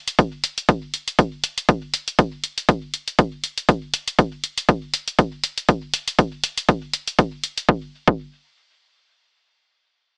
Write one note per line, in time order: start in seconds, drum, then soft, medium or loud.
0.08 closed hi-hat soft
0.19 kick loud
0.19 closed hi-hat soft
0.44 closed hi-hat medium
0.58 closed hi-hat soft
0.69 kick loud
0.69 closed hi-hat soft
0.94 closed hi-hat medium
1.08 closed hi-hat soft
1.19 kick medium
1.19 closed hi-hat soft
1.44 closed hi-hat medium
1.58 closed hi-hat soft
1.69 kick loud
1.69 closed hi-hat soft
1.94 closed hi-hat medium
2.08 closed hi-hat soft
2.19 kick medium
2.19 closed hi-hat soft
2.44 closed hi-hat medium
2.58 closed hi-hat soft
2.69 kick loud
2.69 closed hi-hat soft
2.94 closed hi-hat medium
3.08 closed hi-hat soft
3.19 kick medium
3.19 closed hi-hat soft
3.44 closed hi-hat medium
3.58 closed hi-hat soft
3.69 kick loud
3.69 closed hi-hat soft
3.94 closed hi-hat medium
4.08 closed hi-hat soft
4.19 kick medium
4.19 closed hi-hat soft
4.44 closed hi-hat medium
4.58 closed hi-hat soft
4.69 kick loud
4.69 closed hi-hat soft
4.94 closed hi-hat medium
5.08 closed hi-hat soft
5.19 kick medium
5.19 closed hi-hat soft
5.44 closed hi-hat medium
5.58 closed hi-hat soft
5.69 kick loud
5.69 closed hi-hat soft
5.94 closed hi-hat medium
6.08 closed hi-hat soft
6.19 kick medium
6.19 closed hi-hat soft
6.44 closed hi-hat medium
6.58 closed hi-hat soft
6.69 kick loud
6.69 closed hi-hat soft
6.93 closed hi-hat medium
7.07 closed hi-hat soft
7.19 kick medium
7.19 closed hi-hat soft
7.44 closed hi-hat medium
7.58 closed hi-hat soft
7.69 kick loud
8.08 kick loud